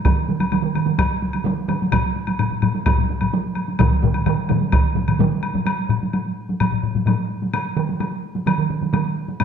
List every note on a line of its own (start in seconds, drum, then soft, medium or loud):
0.05 taiko medium
0.05 taiko mid medium
0.05 taiko high medium
0.05 high woodblock soft
0.29 taiko mid medium
0.29 taiko high medium
0.40 taiko mid medium
0.40 taiko high medium
0.40 high woodblock soft
0.52 taiko mid medium
0.52 taiko high medium
0.52 high woodblock soft
0.63 taiko mid medium
0.75 taiko mid medium
0.75 taiko high medium
0.75 high woodblock soft
0.86 taiko mid medium
0.86 taiko high medium
0.98 taiko medium
0.98 taiko high medium
0.98 high woodblock medium
1.22 taiko high medium
1.33 taiko high medium
1.33 high woodblock soft
1.45 taiko mid loud
1.45 taiko high medium
1.68 taiko mid loud
1.68 taiko high medium
1.68 high woodblock soft
1.82 taiko high medium
1.92 taiko medium
1.92 taiko low-mid medium
1.92 taiko high medium
1.92 high woodblock medium
2.16 taiko high medium
2.27 taiko high medium
2.27 high woodblock soft
2.39 taiko low-mid medium
2.39 taiko high medium
2.39 high woodblock soft
2.50 taiko low-mid medium
2.62 taiko low-mid medium
2.62 taiko high medium
2.62 high woodblock soft
2.75 taiko high medium
2.86 taiko loud
2.86 taiko low-mid medium
2.86 taiko high medium
2.86 high woodblock medium
2.97 taiko low-mid medium
3.09 taiko low-mid medium
3.09 taiko high medium
3.21 taiko low-mid medium
3.21 taiko high medium
3.21 high woodblock soft
3.33 taiko high medium
3.55 taiko high medium
3.55 high woodblock soft
3.68 taiko high medium
3.79 taiko loud
3.79 taiko low-mid medium
3.79 taiko mid loud
3.79 taiko high medium
3.79 high woodblock medium
4.02 taiko low-mid loud
4.02 taiko mid loud
4.02 taiko high medium
4.14 taiko high medium
4.14 high woodblock soft
4.26 taiko low-mid loud
4.26 taiko mid loud
4.26 taiko high medium
4.26 high woodblock soft
4.49 taiko low-mid loud
4.49 taiko mid loud
4.49 taiko high medium
4.49 high woodblock soft
4.62 taiko high medium
4.72 taiko loud
4.72 taiko low-mid medium
4.72 taiko mid medium
4.72 taiko high medium
4.72 high woodblock medium
4.96 taiko low-mid medium
4.96 taiko mid medium
4.96 taiko high medium
5.08 taiko low-mid medium
5.08 taiko mid medium
5.08 taiko high medium
5.08 high woodblock soft
5.19 taiko low-mid loud
5.19 taiko mid loud
5.19 taiko high medium
5.43 taiko high medium
5.43 high woodblock soft
5.54 taiko low-mid medium
5.54 taiko mid medium
5.54 taiko high medium
5.67 taiko high medium
5.67 high woodblock medium
5.89 taiko low-mid medium
5.89 taiko high soft
5.89 high woodblock soft
6.03 taiko high medium
6.13 taiko high medium
6.13 high woodblock soft
6.49 taiko high medium
6.60 taiko low-mid medium
6.60 taiko high medium
6.60 high woodblock medium
6.72 taiko low-mid medium
6.83 taiko low-mid medium
6.95 taiko low-mid medium
6.95 taiko high medium
7.07 taiko low-mid medium
7.07 taiko high medium
7.07 high woodblock soft
7.42 taiko high medium
7.54 taiko high medium
7.54 high woodblock medium
7.77 taiko mid loud
7.77 taiko high soft
7.77 high woodblock soft
7.89 taiko high medium
8.00 taiko high medium
8.00 high woodblock soft
8.35 taiko high medium
8.46 taiko mid medium
8.46 taiko high medium
8.46 high woodblock soft
8.58 taiko mid medium
8.70 taiko mid medium
8.81 taiko mid medium
8.81 taiko high medium
8.93 taiko mid loud
8.93 taiko high medium
8.93 high woodblock soft
9.28 taiko high medium
9.40 taiko low-mid medium
9.40 taiko high medium
9.40 high woodblock medium